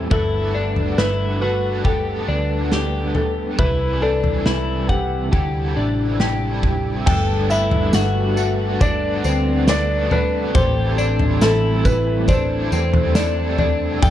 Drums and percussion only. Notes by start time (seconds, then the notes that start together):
0.11 kick, floor tom
0.76 floor tom
0.98 snare
1.84 kick, floor tom
2.72 snare
3.15 floor tom
3.59 kick, floor tom
4.24 floor tom
4.46 snare
4.89 kick
5.33 kick, floor tom
6.20 snare
6.63 kick, floor tom
7.07 kick, floor tom, crash, tambourine
7.50 tambourine
7.71 floor tom
7.93 snare, tambourine
8.37 tambourine
8.81 kick, floor tom, tambourine
9.24 tambourine
9.68 snare, tambourine
10.11 floor tom
10.55 kick, floor tom, tambourine
10.98 tambourine
11.19 floor tom
11.41 snare, tambourine
11.85 kick, tambourine
12.28 kick, floor tom, tambourine
12.72 tambourine
12.94 floor tom
13.15 snare, tambourine
13.58 floor tom
14.02 kick, floor tom, tambourine